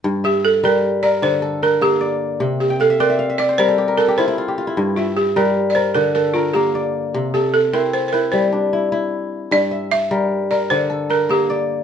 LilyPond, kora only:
<<
  \new Staff \with { instrumentName = "Kora" } { \time 12/8 \key g \dorian \tempo 4. = 101 r8 e''4 bes'4 bes'4 a'8 bes'4 d''4~ | d''8 r16 g''16 f''16 e''16 d''16 e''16 f''16 e''16 d''16 c''16 bes'16 a'16 g'16 bes'16 a'16 g'16 f'16 e'16 f'16 g'16 f'16 e'16~ | e'16 r16 e''4 bes'4 bes'4 a'8 bes'4 d''4~ | d''8 a'4 e'4 e'4 d'8 e'4. r8 |
r8 e''4 bes'4 bes'4 a'8 bes'4 d''4 | }
  \new Staff \with { instrumentName = "Kora" } { \clef bass \time 12/8 \key g \dorian g,4 r8 g4 r8 d4 r8 bes4 r8 | c4 r8 c'4 r8 g4 r8 e'4 r8 | g,4 r8 g4 r8 d4 r8 bes4 r8 | c4 r8 c'4 r8 g4 r8 e'4 r8 |
g,4 r8 g4 r8 d4 r8 bes4 r8 | }
>>